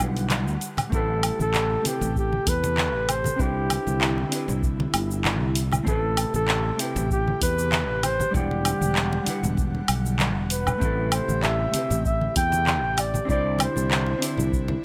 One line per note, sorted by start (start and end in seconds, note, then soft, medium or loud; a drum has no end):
0.00 0.47 B1 medium
0.00 0.89 D3 medium
0.00 0.87 G3 medium
0.00 0.89 G3 medium
0.00 0.88 D4 medium
0.00 0.89 E4 medium
0.00 0.27 G4 medium
0.00 0.91 B4 medium
0.00 0.89 F#5 medium
0.00 0.90 F#5 medium
0.00 shaker medium
0.17 open hi-hat soft
0.17 shaker soft
0.29 clap medium
0.29 open hi-hat medium
0.29 muted conga medium
0.29 high conga medium
0.29 shaker soft
0.47 0.55 D2 medium
0.47 shaker soft
0.61 open hi-hat soft
0.61 shaker medium
0.77 open hi-hat medium
0.77 muted conga medium
0.77 high conga medium
0.77 low conga medium
0.77 low woodblock medium
0.77 shaker soft
0.90 1.29 A1 loud
0.90 3.37 C3 medium
0.90 1.80 A3 medium
0.90 1.81 C4 medium
0.90 1.82 E4 medium
0.90 3.37 G4 medium
0.90 3.37 A4 medium
0.90 kick loud
0.90 muted conga medium
0.90 shaker soft
0.94 1.83 G4 medium
0.94 1.37 A4 loud
0.94 1.83 B4 loud
1.23 open hi-hat medium
1.23 low woodblock medium
1.23 shaker medium
1.39 1.75 A1 medium
1.39 1.89 A4 medium
1.39 high conga medium
1.39 shaker soft
1.54 clap loud
1.54 muted conga medium
1.54 shaker soft
1.82 3.34 A3 medium
1.82 3.35 C4 medium
1.82 3.36 E4 medium
1.82 open hi-hat medium
1.82 high conga medium
1.82 shaker medium
1.87 3.37 G4 medium
1.87 2.17 G4 medium
1.87 3.38 B4 medium
2.01 2.37 A1 medium
2.01 muted conga medium
2.01 low conga medium
2.01 shaker soft
2.16 2.50 G4 medium
2.16 kick loud
2.16 shaker soft
2.32 high conga medium
2.46 2.94 E2 medium
2.46 3.13 B4 loud
2.46 kick loud
2.46 open hi-hat loud
2.46 shaker medium
2.64 muted conga medium
2.64 shaker soft
2.77 clap loud
2.77 high conga medium
2.77 shaker soft
2.94 3.30 A1 medium
3.09 3.43 C5 loud
3.09 open hi-hat medium
3.09 muted conga medium
3.09 low woodblock medium
3.09 shaker medium
3.24 high conga loud
3.24 low conga medium
3.24 shaker soft
3.36 3.76 C2 loud
3.36 5.84 D3 medium
3.36 4.27 C4 medium
3.36 4.28 D4 medium
3.36 5.84 E4 medium
3.36 4.29 E4 medium
3.36 kick loud
3.36 shaker soft
3.41 4.30 G4 medium
3.41 4.64 G4 loud
3.41 4.30 C5 medium
3.70 open hi-hat medium
3.70 muted conga medium
3.70 low woodblock medium
3.70 shaker medium
3.87 4.23 C2 medium
3.87 high conga medium
3.87 shaker soft
4.01 clap loud
4.01 shaker soft
4.18 muted conga soft
4.29 5.82 C4 medium
4.29 5.82 D4 medium
4.29 5.83 E4 medium
4.29 open hi-hat medium
4.29 shaker medium
4.34 5.84 G4 medium
4.34 5.85 B4 medium
4.48 4.85 C2 medium
4.48 low conga medium
4.48 shaker soft
4.63 kick loud
4.63 shaker soft
4.80 muted conga medium
4.80 high conga loud
4.94 5.41 G1 loud
4.94 open hi-hat medium
4.94 low woodblock medium
4.94 shaker medium
5.11 shaker soft
5.25 clap loud
5.25 muted conga medium
5.25 high conga medium
5.25 shaker soft
5.41 5.77 C2 medium
5.55 open hi-hat medium
5.55 shaker medium
5.72 high conga loud
5.72 low conga medium
5.72 low woodblock medium
5.72 shaker soft
5.83 6.24 A1 loud
5.83 8.31 C3 medium
5.83 6.74 A3 medium
5.83 6.75 C4 medium
5.83 6.76 E4 medium
5.83 8.31 G4 medium
5.83 kick loud
5.87 6.77 G4 medium
5.87 6.31 A4 loud
5.87 6.78 B4 loud
5.87 muted conga medium
5.87 shaker soft
6.17 open hi-hat medium
6.17 low woodblock medium
6.17 shaker medium
6.34 6.70 A1 medium
6.34 6.82 A4 loud
6.34 muted conga soft
6.34 high conga medium
6.34 shaker soft
6.48 clap loud
6.48 shaker soft
6.76 8.29 A3 medium
6.76 8.30 C4 medium
6.76 8.31 E4 medium
6.76 open hi-hat medium
6.76 shaker medium
6.81 7.11 G4 medium
6.81 8.31 G4 medium
6.81 8.32 B4 medium
6.96 7.32 A1 medium
6.96 muted conga medium
6.96 low conga medium
6.96 shaker soft
7.10 7.40 G4 medium
7.10 kick loud
7.10 shaker soft
7.28 high conga loud
7.41 7.89 E2 medium
7.41 8.06 B4 loud
7.41 kick loud
7.41 open hi-hat medium
7.41 muted conga medium
7.41 shaker medium
7.59 shaker soft
7.72 clap loud
7.72 high conga medium
7.72 shaker soft
7.89 8.25 A1 medium
8.03 8.35 C5 loud
8.03 open hi-hat medium
8.03 muted conga medium
8.03 low woodblock medium
8.03 shaker medium
8.20 high conga medium
8.20 low conga medium
8.20 shaker medium
8.31 8.71 E1 loud
8.31 10.79 D3 medium
8.31 9.22 G3 medium
8.31 10.79 G3 medium
8.31 9.23 D4 medium
8.31 9.23 E4 medium
8.31 10.79 F#5 medium
8.31 kick loud
8.35 9.54 G4 loud
8.35 9.25 D5 medium
8.35 9.24 F#5 medium
8.35 shaker soft
8.51 muted conga medium
8.65 open hi-hat medium
8.65 low woodblock medium
8.65 shaker medium
8.81 9.17 E1 medium
8.81 high conga medium
8.81 shaker soft
8.96 clap loud
8.96 shaker soft
9.13 muted conga medium
9.23 10.76 G3 medium
9.23 10.77 D4 medium
9.23 10.78 E4 medium
9.23 open hi-hat medium
9.27 10.80 B4 medium
9.27 10.79 F#5 medium
9.27 high conga medium
9.27 shaker medium
9.43 9.79 E1 medium
9.43 low conga medium
9.43 shaker soft
9.57 kick loud
9.57 muted conga soft
9.57 shaker soft
9.75 high conga medium
9.88 10.36 B1 medium
9.88 open hi-hat medium
9.88 low woodblock medium
9.88 shaker medium
10.06 shaker soft
10.19 clap loud
10.19 muted conga medium
10.19 high conga medium
10.19 shaker soft
10.36 10.72 E1 medium
10.50 11.14 B4 medium
10.50 open hi-hat medium
10.50 shaker medium
10.67 muted conga medium
10.67 high conga medium
10.67 low conga medium
10.67 low woodblock medium
10.67 shaker soft
10.78 11.18 A1 loud
10.78 13.26 C3 medium
10.78 11.69 A3 medium
10.78 11.70 C4 medium
10.78 11.71 E4 medium
10.78 13.26 G4 medium
10.78 kick loud
10.78 muted conga soft
10.82 11.72 G4 medium
10.82 11.72 A4 loud
10.82 shaker soft
11.12 11.45 C5 medium
11.12 open hi-hat medium
11.12 low woodblock medium
11.12 shaker medium
11.28 11.65 A1 medium
11.28 high conga medium
11.28 shaker soft
11.43 12.05 E5 loud
11.43 clap medium
11.43 muted conga medium
11.43 shaker soft
11.71 13.24 A3 medium
11.71 13.24 C4 medium
11.71 13.26 E4 medium
11.71 open hi-hat medium
11.71 high conga medium
11.71 shaker medium
11.76 13.26 G4 medium
11.76 13.27 B4 medium
11.90 12.27 A1 medium
11.90 muted conga medium
11.90 low conga medium
11.90 shaker soft
12.05 12.34 E5 loud
12.05 kick loud
12.05 shaker soft
12.21 high conga medium
12.36 12.83 E2 loud
12.36 13.01 G5 loud
12.36 kick loud
12.36 open hi-hat medium
12.36 shaker medium
12.52 muted conga medium
12.52 shaker soft
12.67 clap medium
12.67 high conga medium
12.67 shaker soft
12.83 13.19 A1 medium
12.97 13.30 D5 loud
12.97 open hi-hat medium
12.97 muted conga medium
12.97 low woodblock medium
12.97 shaker medium
13.14 high conga medium
13.14 low conga medium
13.14 shaker soft
13.25 13.66 C2 loud
13.25 14.85 D3 medium
13.25 14.16 C4 medium
13.25 14.17 D4 medium
13.25 14.18 E4 medium
13.25 14.85 E4 medium
13.25 kick loud
13.30 14.19 G4 medium
13.30 14.20 C5 medium
13.30 13.63 D5 loud
13.30 shaker soft
13.59 14.54 C5 medium
13.59 open hi-hat medium
13.59 muted conga medium
13.59 low woodblock medium
13.59 shaker medium
13.76 14.13 C2 medium
13.76 high conga medium
13.76 shaker soft
13.91 clap loud
13.91 shaker soft
14.06 muted conga soft
14.18 14.85 C4 medium
14.18 14.85 D4 medium
14.18 14.85 E4 medium
14.18 open hi-hat medium
14.23 14.85 G4 medium
14.23 14.85 C5 medium
14.23 shaker medium
14.37 14.74 C2 medium
14.37 low conga medium
14.37 shaker soft
14.53 kick loud
14.53 shaker soft
14.68 muted conga medium
14.68 high conga medium